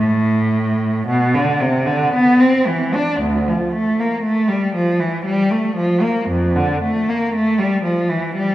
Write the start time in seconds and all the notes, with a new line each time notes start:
0.00 A2
1.07 B2
1.34 D3
1.60 C3
1.86 D3
2.13 B3
2.40 C4
2.67 E3
2.94 D4
3.20 D2
3.48 F3
3.73 A3
4.00 A#3
4.23 A3
4.48 G3
4.75 F3
4.99 E3
5.25 G3
5.50 A3
5.76 F3
6.02 A#3
6.29 F2
6.56 D3
6.82 A3
7.08 A#3
7.34 A3
7.59 G3
7.83 F3
8.09 E3
8.35 G3